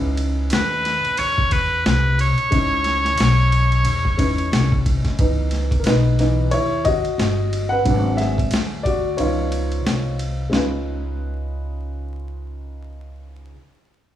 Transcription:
Already playing: C#2 G#3 C#4 D#4 E4 B4
0.17 ride
0.50 D#2 B4, snare, hi-hat pedal, ride
0.85 snare, ride
1.04 muted upright bass stroke, ride
1.17 E2 C#5, ride
1.38 kick
1.51 B4, kick, ride
1.85 C2 B4, snare, hi-hat pedal, ride
2.19 C#5, ride
2.38 ride
2.50 C#2 G#3 C#4 D#4 E4 G#4, kick, ride
2.84 snare, ride
3.05 snare, ride
3.18 B1, snare, hi-hat pedal, ride
3.52 ride
3.72 ride
3.85 E2, ride
4.05 kick
4.17 G#3 C#4 D#4 E4 B4, kick, ride
4.38 ride
4.52 C2, snare, hi-hat pedal, ride
4.72 kick
4.86 kick, ride
5.05 muted upright bass stroke, kick, snare, ride
5.19 C#2 E3 B3 D#4, kick, ride
5.51 snare, ride
5.71 kick, ride
5.79 A#4
5.84 B1 D#4 B4, snare, hi-hat pedal, ride
6.19 E3 B3 D#4, snare, ride
6.51 D#2 E4 C#5, ride
6.85 F#4 D#5, kick, ride
7.04 muted upright bass stroke, ride
7.18 G1, snare, hi-hat pedal, ride
7.53 ride
7.69 B4 F#5
7.85 G#1 F#3 B3 D4, kick, ride
8.17 G#4 E5, snare, ride
8.38 kick, ride
8.51 D2, snare, hi-hat pedal, ride
8.83 F#4 D5, kick, ride
9.17 C#2 F3 B3 D#4 F4 C#5, ride
9.52 ride
9.72 ride
9.86 C2, snare, hi-hat pedal, ride
10.19 ride
10.49 C#2 G#3 C#4 D#4, snare
10.54 F4 B4

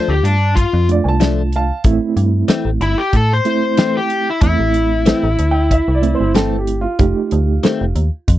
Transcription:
Already playing: F3 A3 D4 F4
0.09 D2 G4
0.23 G2 D4, closed hi-hat
0.55 F4, kick, closed hi-hat
0.74 F2
0.89 A3 D4 F4 D5, closed hi-hat
1.04 C2 G#5
1.09 A5
1.20 F3 A3 D4, snare, closed hi-hat
1.52 F5 A5, closed hi-hat
1.84 A1 A3 C4 E4, kick, closed hi-hat
2.17 G2, closed hi-hat
2.48 E3 A3 C4, snare, closed hi-hat
2.65 A1
2.81 G1 E4, closed hi-hat
2.98 G4
3.13 A2 A4, kick, closed hi-hat
3.33 C5
3.45 A3 C4 E4, closed hi-hat
3.77 E3 A3 C4, snare, closed hi-hat
3.97 G4
4.10 closed hi-hat
4.30 E4
4.41 E2 A3 C4 E4, kick, closed hi-hat
4.60 A1
4.74 closed hi-hat
5.06 E3 A3 C4, snare, closed hi-hat
5.23 A1
5.39 D2, closed hi-hat
5.51 G5
5.71 E5, kick, closed hi-hat
5.88 C2
5.95 D5
6.02 A3 C4 E4, closed hi-hat
6.15 C5
6.21 G1
6.35 E3 A3 C4 A4, snare, closed hi-hat
6.59 G4
6.67 closed hi-hat
6.81 F4
6.99 F1 A3 D#4 G4, kick, closed hi-hat
7.31 D2, closed hi-hat
7.63 D#3 A3 C4, snare, closed hi-hat
7.81 F1
7.96 D#2, closed hi-hat
8.28 F2, kick, closed hi-hat

